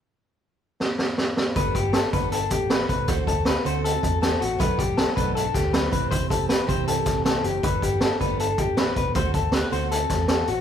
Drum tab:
HH |--------|xxxxxxxx|xxxxxxxx|xxxxxxxx|
SD |----oooo|--o---o-|--o---o-|--o--oo-|
BD |--------|oo-o-o-o|oo---o--|oo-o-o-o|

HH |xxxxxxxx|xxxxxxxx|xxxxxxxx|
SD |--o--oo-|--o---o-|--o--oo-|
BD |oo-o-o--|oo-o-o-o|oo---o--|